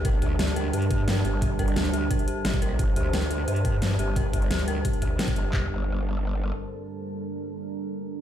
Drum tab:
HH |x-x-xxx-xxx-x-x-|x-xxxxx-xxx-xxx-|x-x-xxx-xxx-x-x-|x-xxxxx-xxx-xxx-|
CP |----------------|----------------|----------------|----------------|
SD |----o-------o---|----o-------o---|----o-------o---|----o-------o---|
FT |----------------|----------------|----------------|----------------|
BD |o-o-------o-----|o-o-----o----o--|o-o-------o-----|o-o-----o-o--o--|

HH |----------------|----------------|
CP |x---------------|----------------|
SD |----------------|----------------|
FT |o---------------|----------------|
BD |o---------------|----------------|